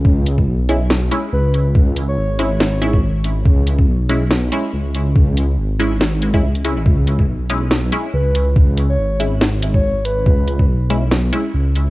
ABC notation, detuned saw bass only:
X:1
M:4/4
L:1/8
Q:"Swing 16ths" 1/4=141
K:C#m
V:1 name="Detuned saw bass" clef=bass
C,,2 B,,,3 z C,,2 | C,,2 G,,,6 | C,,2 B,,,3 z C,,2 | C,,2 G,,,4 C,,2 |
C,,2 B,,,3 z C,,2 | C,,2 G,,,6 | C,,2 B,,,3 z C,,2 |]